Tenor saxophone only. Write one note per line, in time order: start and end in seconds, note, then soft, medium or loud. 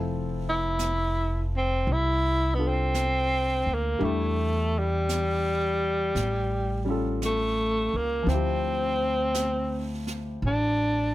0.49 1.50 E4 medium
1.57 1.93 C4 medium
1.92 2.56 E4 medium
2.54 2.69 B3 medium
2.68 3.76 C4 medium
3.74 4.06 A#3 medium
4.05 4.80 A3 medium
4.78 7.06 G3 medium
7.25 7.98 A3 medium
7.97 8.31 A#3 medium
8.30 10.07 C4 medium
10.46 11.14 D4 medium